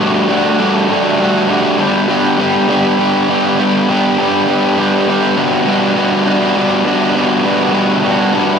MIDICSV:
0, 0, Header, 1, 2, 480
1, 0, Start_track
1, 0, Key_signature, 1, "major"
1, 0, Tempo, 595829
1, 11, Time_signature, 3, 2, 24, 8
1, 6920, End_track
2, 0, Start_track
2, 0, Title_t, "Distorted electric guitar"
2, 0, Program_c, 0, 30
2, 0, Note_on_c, 0, 55, 111
2, 0, Note_on_c, 0, 57, 112
2, 4, Note_on_c, 0, 62, 117
2, 8, Note_on_c, 0, 66, 124
2, 227, Note_off_c, 0, 55, 0
2, 230, Note_off_c, 0, 57, 0
2, 237, Note_on_c, 0, 55, 74
2, 239, Note_on_c, 0, 57, 87
2, 242, Note_off_c, 0, 62, 0
2, 242, Note_off_c, 0, 66, 0
2, 246, Note_on_c, 0, 62, 99
2, 251, Note_on_c, 0, 66, 91
2, 465, Note_off_c, 0, 55, 0
2, 470, Note_off_c, 0, 57, 0
2, 475, Note_on_c, 0, 55, 103
2, 480, Note_on_c, 0, 57, 101
2, 483, Note_off_c, 0, 66, 0
2, 486, Note_off_c, 0, 62, 0
2, 489, Note_on_c, 0, 62, 120
2, 493, Note_on_c, 0, 66, 111
2, 711, Note_off_c, 0, 55, 0
2, 716, Note_off_c, 0, 57, 0
2, 720, Note_on_c, 0, 55, 80
2, 725, Note_off_c, 0, 66, 0
2, 726, Note_on_c, 0, 57, 88
2, 728, Note_off_c, 0, 62, 0
2, 731, Note_on_c, 0, 62, 94
2, 735, Note_on_c, 0, 66, 88
2, 958, Note_off_c, 0, 55, 0
2, 961, Note_off_c, 0, 57, 0
2, 967, Note_on_c, 0, 55, 101
2, 971, Note_on_c, 0, 57, 97
2, 974, Note_off_c, 0, 62, 0
2, 974, Note_off_c, 0, 66, 0
2, 978, Note_on_c, 0, 62, 107
2, 983, Note_on_c, 0, 66, 122
2, 1191, Note_off_c, 0, 55, 0
2, 1197, Note_off_c, 0, 57, 0
2, 1200, Note_on_c, 0, 55, 88
2, 1206, Note_off_c, 0, 66, 0
2, 1206, Note_on_c, 0, 57, 92
2, 1208, Note_off_c, 0, 62, 0
2, 1211, Note_on_c, 0, 62, 81
2, 1215, Note_on_c, 0, 66, 95
2, 1429, Note_off_c, 0, 55, 0
2, 1437, Note_off_c, 0, 57, 0
2, 1438, Note_on_c, 0, 55, 111
2, 1441, Note_off_c, 0, 66, 0
2, 1445, Note_on_c, 0, 59, 119
2, 1448, Note_off_c, 0, 62, 0
2, 1452, Note_on_c, 0, 62, 125
2, 1456, Note_on_c, 0, 67, 125
2, 1675, Note_off_c, 0, 55, 0
2, 1678, Note_off_c, 0, 59, 0
2, 1678, Note_on_c, 0, 55, 83
2, 1681, Note_off_c, 0, 62, 0
2, 1681, Note_on_c, 0, 59, 86
2, 1684, Note_on_c, 0, 62, 85
2, 1690, Note_off_c, 0, 67, 0
2, 1693, Note_on_c, 0, 67, 102
2, 1916, Note_off_c, 0, 55, 0
2, 1920, Note_on_c, 0, 55, 91
2, 1924, Note_off_c, 0, 59, 0
2, 1928, Note_on_c, 0, 59, 109
2, 1931, Note_off_c, 0, 62, 0
2, 1934, Note_off_c, 0, 67, 0
2, 1935, Note_on_c, 0, 62, 98
2, 1938, Note_on_c, 0, 67, 107
2, 2154, Note_off_c, 0, 55, 0
2, 2163, Note_off_c, 0, 59, 0
2, 2164, Note_on_c, 0, 55, 73
2, 2167, Note_on_c, 0, 59, 84
2, 2170, Note_off_c, 0, 62, 0
2, 2170, Note_off_c, 0, 67, 0
2, 2173, Note_on_c, 0, 62, 91
2, 2180, Note_on_c, 0, 67, 98
2, 2397, Note_off_c, 0, 55, 0
2, 2407, Note_on_c, 0, 55, 97
2, 2413, Note_off_c, 0, 59, 0
2, 2414, Note_off_c, 0, 62, 0
2, 2415, Note_off_c, 0, 67, 0
2, 2416, Note_on_c, 0, 59, 92
2, 2417, Note_on_c, 0, 62, 99
2, 2425, Note_on_c, 0, 67, 113
2, 2640, Note_off_c, 0, 55, 0
2, 2650, Note_on_c, 0, 55, 85
2, 2652, Note_off_c, 0, 59, 0
2, 2653, Note_off_c, 0, 67, 0
2, 2656, Note_on_c, 0, 59, 86
2, 2657, Note_off_c, 0, 62, 0
2, 2660, Note_on_c, 0, 62, 91
2, 2663, Note_on_c, 0, 67, 94
2, 2880, Note_off_c, 0, 55, 0
2, 2889, Note_off_c, 0, 59, 0
2, 2890, Note_on_c, 0, 55, 106
2, 2893, Note_off_c, 0, 67, 0
2, 2893, Note_on_c, 0, 59, 109
2, 2897, Note_off_c, 0, 62, 0
2, 2901, Note_on_c, 0, 62, 114
2, 2903, Note_on_c, 0, 67, 127
2, 3129, Note_off_c, 0, 55, 0
2, 3139, Note_on_c, 0, 55, 82
2, 3140, Note_off_c, 0, 67, 0
2, 3144, Note_off_c, 0, 59, 0
2, 3146, Note_off_c, 0, 62, 0
2, 3147, Note_on_c, 0, 59, 87
2, 3149, Note_on_c, 0, 62, 97
2, 3150, Note_on_c, 0, 67, 90
2, 3363, Note_off_c, 0, 55, 0
2, 3372, Note_on_c, 0, 55, 101
2, 3377, Note_off_c, 0, 59, 0
2, 3380, Note_on_c, 0, 59, 85
2, 3384, Note_off_c, 0, 62, 0
2, 3384, Note_off_c, 0, 67, 0
2, 3387, Note_on_c, 0, 62, 105
2, 3394, Note_on_c, 0, 67, 109
2, 3601, Note_off_c, 0, 55, 0
2, 3611, Note_on_c, 0, 55, 79
2, 3617, Note_off_c, 0, 67, 0
2, 3618, Note_off_c, 0, 59, 0
2, 3620, Note_off_c, 0, 62, 0
2, 3621, Note_on_c, 0, 59, 80
2, 3624, Note_on_c, 0, 62, 93
2, 3627, Note_on_c, 0, 67, 90
2, 3843, Note_off_c, 0, 55, 0
2, 3853, Note_off_c, 0, 59, 0
2, 3853, Note_on_c, 0, 55, 84
2, 3856, Note_on_c, 0, 59, 97
2, 3858, Note_off_c, 0, 62, 0
2, 3862, Note_off_c, 0, 67, 0
2, 3862, Note_on_c, 0, 62, 105
2, 3871, Note_on_c, 0, 67, 102
2, 4083, Note_off_c, 0, 55, 0
2, 4093, Note_off_c, 0, 59, 0
2, 4093, Note_on_c, 0, 55, 86
2, 4097, Note_on_c, 0, 59, 88
2, 4100, Note_off_c, 0, 67, 0
2, 4102, Note_off_c, 0, 62, 0
2, 4106, Note_on_c, 0, 62, 94
2, 4110, Note_on_c, 0, 67, 96
2, 4319, Note_off_c, 0, 55, 0
2, 4328, Note_off_c, 0, 67, 0
2, 4330, Note_on_c, 0, 55, 106
2, 4336, Note_off_c, 0, 59, 0
2, 4338, Note_off_c, 0, 62, 0
2, 4340, Note_on_c, 0, 59, 106
2, 4341, Note_on_c, 0, 62, 95
2, 4346, Note_on_c, 0, 66, 113
2, 4562, Note_off_c, 0, 55, 0
2, 4571, Note_off_c, 0, 59, 0
2, 4571, Note_on_c, 0, 55, 77
2, 4574, Note_on_c, 0, 59, 85
2, 4579, Note_off_c, 0, 62, 0
2, 4581, Note_off_c, 0, 66, 0
2, 4582, Note_on_c, 0, 62, 72
2, 4584, Note_on_c, 0, 66, 96
2, 4795, Note_off_c, 0, 55, 0
2, 4805, Note_off_c, 0, 59, 0
2, 4805, Note_on_c, 0, 55, 87
2, 4809, Note_on_c, 0, 59, 97
2, 4812, Note_off_c, 0, 62, 0
2, 4814, Note_off_c, 0, 66, 0
2, 4815, Note_on_c, 0, 62, 104
2, 4817, Note_on_c, 0, 66, 108
2, 5037, Note_off_c, 0, 55, 0
2, 5038, Note_off_c, 0, 59, 0
2, 5044, Note_off_c, 0, 62, 0
2, 5046, Note_on_c, 0, 55, 81
2, 5047, Note_on_c, 0, 59, 79
2, 5048, Note_off_c, 0, 66, 0
2, 5054, Note_on_c, 0, 62, 90
2, 5058, Note_on_c, 0, 66, 99
2, 5278, Note_off_c, 0, 55, 0
2, 5285, Note_off_c, 0, 59, 0
2, 5288, Note_on_c, 0, 55, 87
2, 5290, Note_off_c, 0, 62, 0
2, 5294, Note_off_c, 0, 66, 0
2, 5294, Note_on_c, 0, 59, 116
2, 5300, Note_on_c, 0, 62, 106
2, 5304, Note_on_c, 0, 66, 111
2, 5513, Note_off_c, 0, 55, 0
2, 5519, Note_off_c, 0, 59, 0
2, 5522, Note_on_c, 0, 55, 78
2, 5526, Note_off_c, 0, 62, 0
2, 5528, Note_on_c, 0, 59, 76
2, 5530, Note_off_c, 0, 66, 0
2, 5536, Note_on_c, 0, 62, 96
2, 5540, Note_on_c, 0, 66, 90
2, 5753, Note_off_c, 0, 55, 0
2, 5758, Note_off_c, 0, 59, 0
2, 5762, Note_on_c, 0, 55, 104
2, 5765, Note_off_c, 0, 62, 0
2, 5768, Note_on_c, 0, 59, 115
2, 5769, Note_off_c, 0, 66, 0
2, 5775, Note_on_c, 0, 62, 114
2, 5779, Note_on_c, 0, 66, 124
2, 5989, Note_off_c, 0, 55, 0
2, 5998, Note_on_c, 0, 55, 91
2, 5999, Note_off_c, 0, 59, 0
2, 6001, Note_off_c, 0, 62, 0
2, 6007, Note_off_c, 0, 66, 0
2, 6008, Note_on_c, 0, 59, 85
2, 6010, Note_on_c, 0, 62, 81
2, 6017, Note_on_c, 0, 66, 99
2, 6214, Note_off_c, 0, 55, 0
2, 6220, Note_off_c, 0, 59, 0
2, 6224, Note_on_c, 0, 55, 90
2, 6229, Note_off_c, 0, 62, 0
2, 6230, Note_on_c, 0, 59, 99
2, 6233, Note_off_c, 0, 66, 0
2, 6239, Note_on_c, 0, 62, 110
2, 6242, Note_on_c, 0, 66, 108
2, 6464, Note_off_c, 0, 55, 0
2, 6468, Note_off_c, 0, 59, 0
2, 6474, Note_on_c, 0, 55, 96
2, 6477, Note_off_c, 0, 62, 0
2, 6477, Note_on_c, 0, 59, 78
2, 6481, Note_off_c, 0, 66, 0
2, 6487, Note_on_c, 0, 62, 87
2, 6491, Note_on_c, 0, 66, 102
2, 6701, Note_off_c, 0, 55, 0
2, 6708, Note_off_c, 0, 59, 0
2, 6711, Note_off_c, 0, 62, 0
2, 6711, Note_on_c, 0, 55, 102
2, 6715, Note_off_c, 0, 66, 0
2, 6717, Note_on_c, 0, 59, 107
2, 6721, Note_on_c, 0, 62, 109
2, 6724, Note_on_c, 0, 66, 110
2, 6920, Note_off_c, 0, 55, 0
2, 6920, Note_off_c, 0, 59, 0
2, 6920, Note_off_c, 0, 62, 0
2, 6920, Note_off_c, 0, 66, 0
2, 6920, End_track
0, 0, End_of_file